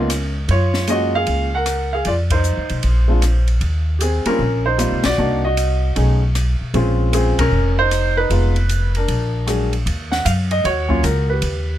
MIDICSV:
0, 0, Header, 1, 5, 480
1, 0, Start_track
1, 0, Key_signature, -5, "minor"
1, 0, Tempo, 390625
1, 598, Time_signature, 4, 2, 24, 8
1, 14479, End_track
2, 0, Start_track
2, 0, Title_t, "Grand piano"
2, 0, Program_c, 0, 0
2, 0, Note_on_c, 0, 61, 58
2, 0, Note_on_c, 0, 70, 72
2, 383, Note_off_c, 0, 70, 0
2, 400, Note_off_c, 0, 61, 0
2, 623, Note_on_c, 0, 73, 82
2, 644, Note_on_c, 0, 65, 63
2, 1071, Note_off_c, 0, 65, 0
2, 1080, Note_on_c, 0, 56, 51
2, 1082, Note_on_c, 0, 58, 50
2, 1095, Note_on_c, 0, 65, 59
2, 1096, Note_on_c, 0, 61, 45
2, 1106, Note_off_c, 0, 73, 0
2, 1107, Note_on_c, 0, 75, 89
2, 1130, Note_on_c, 0, 66, 68
2, 1397, Note_off_c, 0, 66, 0
2, 1414, Note_off_c, 0, 75, 0
2, 1418, Note_on_c, 0, 77, 98
2, 1437, Note_on_c, 0, 68, 70
2, 1811, Note_off_c, 0, 56, 0
2, 1811, Note_off_c, 0, 58, 0
2, 1818, Note_off_c, 0, 65, 0
2, 1819, Note_off_c, 0, 61, 0
2, 1863, Note_off_c, 0, 68, 0
2, 1900, Note_off_c, 0, 77, 0
2, 1902, Note_on_c, 0, 78, 86
2, 1923, Note_on_c, 0, 70, 70
2, 2347, Note_off_c, 0, 70, 0
2, 2370, Note_on_c, 0, 77, 79
2, 2382, Note_off_c, 0, 78, 0
2, 2391, Note_on_c, 0, 68, 64
2, 2531, Note_off_c, 0, 68, 0
2, 2536, Note_off_c, 0, 77, 0
2, 2542, Note_on_c, 0, 74, 83
2, 2559, Note_on_c, 0, 65, 65
2, 2610, Note_off_c, 0, 74, 0
2, 2625, Note_off_c, 0, 65, 0
2, 2846, Note_on_c, 0, 72, 75
2, 2868, Note_on_c, 0, 63, 58
2, 3457, Note_off_c, 0, 63, 0
2, 3783, Note_on_c, 0, 56, 54
2, 3792, Note_on_c, 0, 60, 51
2, 3799, Note_on_c, 0, 62, 48
2, 3809, Note_on_c, 0, 65, 61
2, 3942, Note_off_c, 0, 56, 0
2, 3946, Note_off_c, 0, 60, 0
2, 3950, Note_off_c, 0, 62, 0
2, 3955, Note_off_c, 0, 65, 0
2, 4233, Note_off_c, 0, 72, 0
2, 4899, Note_on_c, 0, 67, 50
2, 4933, Note_on_c, 0, 68, 68
2, 4934, Note_off_c, 0, 67, 0
2, 4957, Note_on_c, 0, 60, 49
2, 5224, Note_off_c, 0, 60, 0
2, 5229, Note_on_c, 0, 55, 55
2, 5231, Note_on_c, 0, 58, 56
2, 5242, Note_on_c, 0, 60, 54
2, 5242, Note_on_c, 0, 70, 90
2, 5246, Note_on_c, 0, 65, 64
2, 5250, Note_off_c, 0, 68, 0
2, 5274, Note_on_c, 0, 61, 61
2, 5386, Note_off_c, 0, 55, 0
2, 5387, Note_off_c, 0, 58, 0
2, 5392, Note_off_c, 0, 60, 0
2, 5394, Note_off_c, 0, 65, 0
2, 5687, Note_off_c, 0, 70, 0
2, 5704, Note_off_c, 0, 61, 0
2, 5722, Note_on_c, 0, 72, 86
2, 5740, Note_on_c, 0, 63, 61
2, 5871, Note_on_c, 0, 55, 57
2, 5880, Note_on_c, 0, 58, 50
2, 5887, Note_on_c, 0, 60, 51
2, 5893, Note_on_c, 0, 65, 62
2, 6159, Note_off_c, 0, 55, 0
2, 6163, Note_off_c, 0, 58, 0
2, 6167, Note_off_c, 0, 60, 0
2, 6167, Note_off_c, 0, 72, 0
2, 6170, Note_off_c, 0, 65, 0
2, 6177, Note_off_c, 0, 63, 0
2, 6204, Note_on_c, 0, 74, 100
2, 6224, Note_on_c, 0, 66, 65
2, 6359, Note_off_c, 0, 66, 0
2, 6362, Note_on_c, 0, 58, 57
2, 6363, Note_on_c, 0, 62, 56
2, 6374, Note_on_c, 0, 63, 56
2, 6378, Note_on_c, 0, 66, 68
2, 6645, Note_off_c, 0, 58, 0
2, 6645, Note_off_c, 0, 62, 0
2, 6648, Note_off_c, 0, 74, 0
2, 6651, Note_off_c, 0, 63, 0
2, 6653, Note_off_c, 0, 66, 0
2, 6693, Note_on_c, 0, 75, 85
2, 6714, Note_on_c, 0, 66, 60
2, 7319, Note_on_c, 0, 57, 46
2, 7324, Note_on_c, 0, 61, 45
2, 7329, Note_on_c, 0, 63, 45
2, 7341, Note_on_c, 0, 68, 53
2, 7597, Note_off_c, 0, 75, 0
2, 7603, Note_off_c, 0, 57, 0
2, 7606, Note_off_c, 0, 61, 0
2, 7607, Note_off_c, 0, 66, 0
2, 7608, Note_off_c, 0, 63, 0
2, 7614, Note_off_c, 0, 68, 0
2, 8284, Note_on_c, 0, 56, 64
2, 8291, Note_on_c, 0, 60, 57
2, 8297, Note_on_c, 0, 61, 61
2, 8310, Note_on_c, 0, 65, 69
2, 8736, Note_off_c, 0, 56, 0
2, 8738, Note_off_c, 0, 60, 0
2, 8747, Note_off_c, 0, 61, 0
2, 8754, Note_off_c, 0, 65, 0
2, 8754, Note_on_c, 0, 56, 50
2, 8756, Note_on_c, 0, 60, 46
2, 8766, Note_on_c, 0, 61, 45
2, 8772, Note_on_c, 0, 65, 59
2, 8778, Note_on_c, 0, 68, 76
2, 8785, Note_off_c, 0, 60, 0
2, 8804, Note_on_c, 0, 60, 64
2, 9041, Note_off_c, 0, 56, 0
2, 9046, Note_off_c, 0, 61, 0
2, 9050, Note_off_c, 0, 65, 0
2, 9076, Note_off_c, 0, 60, 0
2, 9080, Note_on_c, 0, 70, 98
2, 9093, Note_off_c, 0, 68, 0
2, 9103, Note_on_c, 0, 61, 68
2, 9525, Note_off_c, 0, 70, 0
2, 9538, Note_off_c, 0, 61, 0
2, 9569, Note_on_c, 0, 72, 103
2, 9601, Note_on_c, 0, 63, 70
2, 10010, Note_off_c, 0, 72, 0
2, 10027, Note_off_c, 0, 63, 0
2, 10043, Note_on_c, 0, 71, 98
2, 10070, Note_on_c, 0, 63, 68
2, 10195, Note_off_c, 0, 63, 0
2, 10204, Note_on_c, 0, 56, 62
2, 10210, Note_on_c, 0, 59, 54
2, 10214, Note_on_c, 0, 63, 54
2, 10218, Note_on_c, 0, 65, 64
2, 10485, Note_off_c, 0, 56, 0
2, 10488, Note_off_c, 0, 59, 0
2, 10490, Note_off_c, 0, 63, 0
2, 10492, Note_off_c, 0, 65, 0
2, 10950, Note_off_c, 0, 71, 0
2, 11017, Note_on_c, 0, 70, 71
2, 11037, Note_on_c, 0, 62, 54
2, 11632, Note_on_c, 0, 54, 54
2, 11633, Note_off_c, 0, 62, 0
2, 11644, Note_on_c, 0, 56, 46
2, 11651, Note_on_c, 0, 62, 50
2, 11655, Note_on_c, 0, 68, 58
2, 11916, Note_off_c, 0, 70, 0
2, 11918, Note_off_c, 0, 54, 0
2, 11923, Note_off_c, 0, 56, 0
2, 11927, Note_off_c, 0, 62, 0
2, 11929, Note_off_c, 0, 68, 0
2, 12430, Note_on_c, 0, 78, 87
2, 12588, Note_off_c, 0, 78, 0
2, 12599, Note_on_c, 0, 77, 85
2, 12669, Note_off_c, 0, 77, 0
2, 12920, Note_on_c, 0, 75, 87
2, 13088, Note_on_c, 0, 73, 86
2, 13090, Note_off_c, 0, 75, 0
2, 13106, Note_on_c, 0, 66, 65
2, 13375, Note_on_c, 0, 54, 65
2, 13382, Note_on_c, 0, 58, 58
2, 13391, Note_on_c, 0, 61, 58
2, 13393, Note_on_c, 0, 65, 70
2, 13529, Note_off_c, 0, 73, 0
2, 13534, Note_off_c, 0, 54, 0
2, 13538, Note_off_c, 0, 58, 0
2, 13542, Note_off_c, 0, 61, 0
2, 13543, Note_off_c, 0, 65, 0
2, 13564, Note_on_c, 0, 70, 76
2, 13849, Note_off_c, 0, 70, 0
2, 13880, Note_on_c, 0, 71, 71
2, 13901, Note_on_c, 0, 67, 53
2, 14000, Note_off_c, 0, 66, 0
2, 14479, Note_off_c, 0, 67, 0
2, 14479, Note_off_c, 0, 71, 0
2, 14479, End_track
3, 0, Start_track
3, 0, Title_t, "Upright bass"
3, 0, Program_c, 1, 32
3, 0, Note_on_c, 1, 37, 76
3, 553, Note_off_c, 1, 37, 0
3, 594, Note_on_c, 1, 42, 76
3, 1511, Note_off_c, 1, 42, 0
3, 1565, Note_on_c, 1, 37, 76
3, 2477, Note_off_c, 1, 37, 0
3, 2524, Note_on_c, 1, 41, 75
3, 3120, Note_off_c, 1, 41, 0
3, 3159, Note_on_c, 1, 39, 58
3, 3311, Note_off_c, 1, 39, 0
3, 3322, Note_on_c, 1, 35, 63
3, 3472, Note_off_c, 1, 35, 0
3, 3487, Note_on_c, 1, 34, 78
3, 4399, Note_off_c, 1, 34, 0
3, 4433, Note_on_c, 1, 39, 73
3, 5182, Note_off_c, 1, 39, 0
3, 5394, Note_on_c, 1, 34, 77
3, 5996, Note_off_c, 1, 34, 0
3, 6039, Note_on_c, 1, 36, 57
3, 6192, Note_off_c, 1, 36, 0
3, 6202, Note_on_c, 1, 34, 60
3, 6353, Note_off_c, 1, 34, 0
3, 6364, Note_on_c, 1, 36, 77
3, 7278, Note_off_c, 1, 36, 0
3, 7332, Note_on_c, 1, 35, 77
3, 8072, Note_off_c, 1, 35, 0
3, 8279, Note_on_c, 1, 34, 79
3, 9025, Note_off_c, 1, 34, 0
3, 9075, Note_on_c, 1, 35, 64
3, 9229, Note_off_c, 1, 35, 0
3, 9236, Note_on_c, 1, 29, 79
3, 10153, Note_off_c, 1, 29, 0
3, 10197, Note_on_c, 1, 29, 73
3, 11112, Note_off_c, 1, 29, 0
3, 11162, Note_on_c, 1, 34, 74
3, 12074, Note_off_c, 1, 34, 0
3, 12116, Note_on_c, 1, 39, 80
3, 12584, Note_off_c, 1, 39, 0
3, 12599, Note_on_c, 1, 42, 85
3, 13064, Note_off_c, 1, 42, 0
3, 13077, Note_on_c, 1, 39, 74
3, 13542, Note_off_c, 1, 39, 0
3, 13556, Note_on_c, 1, 37, 93
3, 14021, Note_off_c, 1, 37, 0
3, 14032, Note_on_c, 1, 39, 80
3, 14479, Note_off_c, 1, 39, 0
3, 14479, End_track
4, 0, Start_track
4, 0, Title_t, "Muted upright bass strokes"
4, 5228, Note_on_c, 9, 29, 34
4, 5351, Note_off_c, 9, 29, 0
4, 8121, Note_on_c, 9, 29, 38
4, 8244, Note_off_c, 9, 29, 0
4, 14479, End_track
5, 0, Start_track
5, 0, Title_t, "Drums"
5, 119, Note_on_c, 9, 44, 54
5, 119, Note_on_c, 9, 51, 57
5, 121, Note_on_c, 9, 37, 50
5, 242, Note_off_c, 9, 44, 0
5, 242, Note_off_c, 9, 51, 0
5, 244, Note_off_c, 9, 37, 0
5, 597, Note_on_c, 9, 51, 51
5, 720, Note_off_c, 9, 51, 0
5, 907, Note_on_c, 9, 38, 45
5, 1030, Note_off_c, 9, 38, 0
5, 1074, Note_on_c, 9, 44, 57
5, 1074, Note_on_c, 9, 51, 54
5, 1197, Note_off_c, 9, 44, 0
5, 1197, Note_off_c, 9, 51, 0
5, 1555, Note_on_c, 9, 51, 52
5, 1678, Note_off_c, 9, 51, 0
5, 2037, Note_on_c, 9, 44, 53
5, 2037, Note_on_c, 9, 51, 57
5, 2038, Note_on_c, 9, 37, 52
5, 2160, Note_off_c, 9, 44, 0
5, 2160, Note_off_c, 9, 51, 0
5, 2161, Note_off_c, 9, 37, 0
5, 2516, Note_on_c, 9, 51, 51
5, 2639, Note_off_c, 9, 51, 0
5, 2830, Note_on_c, 9, 51, 62
5, 2833, Note_on_c, 9, 36, 67
5, 2953, Note_off_c, 9, 51, 0
5, 2956, Note_off_c, 9, 36, 0
5, 2996, Note_on_c, 9, 44, 53
5, 3119, Note_off_c, 9, 44, 0
5, 3311, Note_on_c, 9, 51, 41
5, 3434, Note_off_c, 9, 51, 0
5, 3474, Note_on_c, 9, 51, 52
5, 3597, Note_off_c, 9, 51, 0
5, 3957, Note_on_c, 9, 44, 54
5, 3957, Note_on_c, 9, 51, 49
5, 3958, Note_on_c, 9, 37, 51
5, 4079, Note_off_c, 9, 44, 0
5, 4079, Note_off_c, 9, 51, 0
5, 4081, Note_off_c, 9, 37, 0
5, 4270, Note_on_c, 9, 51, 40
5, 4393, Note_off_c, 9, 51, 0
5, 4435, Note_on_c, 9, 51, 51
5, 4558, Note_off_c, 9, 51, 0
5, 4921, Note_on_c, 9, 44, 55
5, 4921, Note_on_c, 9, 51, 58
5, 5044, Note_off_c, 9, 44, 0
5, 5044, Note_off_c, 9, 51, 0
5, 5229, Note_on_c, 9, 51, 58
5, 5352, Note_off_c, 9, 51, 0
5, 5883, Note_on_c, 9, 44, 56
5, 5883, Note_on_c, 9, 51, 53
5, 5884, Note_on_c, 9, 37, 51
5, 6006, Note_off_c, 9, 44, 0
5, 6006, Note_off_c, 9, 51, 0
5, 6007, Note_off_c, 9, 37, 0
5, 6188, Note_on_c, 9, 51, 63
5, 6189, Note_on_c, 9, 38, 73
5, 6311, Note_off_c, 9, 51, 0
5, 6312, Note_off_c, 9, 38, 0
5, 6846, Note_on_c, 9, 44, 50
5, 6846, Note_on_c, 9, 51, 60
5, 6969, Note_off_c, 9, 44, 0
5, 6969, Note_off_c, 9, 51, 0
5, 7324, Note_on_c, 9, 51, 53
5, 7447, Note_off_c, 9, 51, 0
5, 7804, Note_on_c, 9, 44, 49
5, 7804, Note_on_c, 9, 51, 54
5, 7806, Note_on_c, 9, 37, 53
5, 7927, Note_off_c, 9, 44, 0
5, 7927, Note_off_c, 9, 51, 0
5, 7928, Note_off_c, 9, 37, 0
5, 8282, Note_on_c, 9, 51, 46
5, 8405, Note_off_c, 9, 51, 0
5, 8762, Note_on_c, 9, 44, 54
5, 8762, Note_on_c, 9, 51, 64
5, 8885, Note_off_c, 9, 44, 0
5, 8885, Note_off_c, 9, 51, 0
5, 9077, Note_on_c, 9, 36, 68
5, 9077, Note_on_c, 9, 51, 66
5, 9200, Note_off_c, 9, 36, 0
5, 9200, Note_off_c, 9, 51, 0
5, 9722, Note_on_c, 9, 44, 56
5, 9722, Note_on_c, 9, 51, 55
5, 9723, Note_on_c, 9, 37, 51
5, 9845, Note_off_c, 9, 44, 0
5, 9845, Note_off_c, 9, 51, 0
5, 9846, Note_off_c, 9, 37, 0
5, 10204, Note_on_c, 9, 51, 53
5, 10327, Note_off_c, 9, 51, 0
5, 10517, Note_on_c, 9, 51, 39
5, 10640, Note_off_c, 9, 51, 0
5, 10682, Note_on_c, 9, 44, 48
5, 10682, Note_on_c, 9, 51, 55
5, 10805, Note_off_c, 9, 44, 0
5, 10805, Note_off_c, 9, 51, 0
5, 10994, Note_on_c, 9, 51, 41
5, 11116, Note_off_c, 9, 51, 0
5, 11161, Note_on_c, 9, 51, 53
5, 11284, Note_off_c, 9, 51, 0
5, 11642, Note_on_c, 9, 44, 47
5, 11642, Note_on_c, 9, 51, 55
5, 11643, Note_on_c, 9, 37, 50
5, 11765, Note_off_c, 9, 44, 0
5, 11765, Note_off_c, 9, 51, 0
5, 11766, Note_off_c, 9, 37, 0
5, 11954, Note_on_c, 9, 51, 41
5, 12077, Note_off_c, 9, 51, 0
5, 12125, Note_on_c, 9, 51, 61
5, 12248, Note_off_c, 9, 51, 0
5, 12436, Note_on_c, 9, 38, 44
5, 12559, Note_off_c, 9, 38, 0
5, 12603, Note_on_c, 9, 44, 52
5, 12603, Note_on_c, 9, 51, 70
5, 12726, Note_off_c, 9, 44, 0
5, 12726, Note_off_c, 9, 51, 0
5, 12912, Note_on_c, 9, 51, 45
5, 13035, Note_off_c, 9, 51, 0
5, 13086, Note_on_c, 9, 51, 57
5, 13209, Note_off_c, 9, 51, 0
5, 13388, Note_on_c, 9, 36, 48
5, 13511, Note_off_c, 9, 36, 0
5, 13562, Note_on_c, 9, 44, 52
5, 13562, Note_on_c, 9, 51, 58
5, 13685, Note_off_c, 9, 44, 0
5, 13685, Note_off_c, 9, 51, 0
5, 14031, Note_on_c, 9, 51, 60
5, 14154, Note_off_c, 9, 51, 0
5, 14479, End_track
0, 0, End_of_file